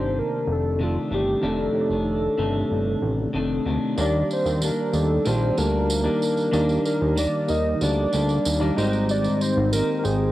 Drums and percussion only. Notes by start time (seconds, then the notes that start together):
3.98 tambourine
4.31 tambourine
4.46 tambourine
4.62 tambourine
4.93 tambourine
5.25 tambourine
5.58 tambourine
5.90 tambourine
6.22 tambourine
6.37 tambourine
6.53 tambourine
6.69 tambourine
6.85 tambourine
7.17 tambourine
7.48 tambourine
7.81 tambourine
8.13 tambourine
8.29 tambourine
8.45 tambourine
8.78 tambourine
8.93 tambourine
9.09 tambourine
9.24 tambourine
9.41 tambourine
9.73 tambourine
10.05 tambourine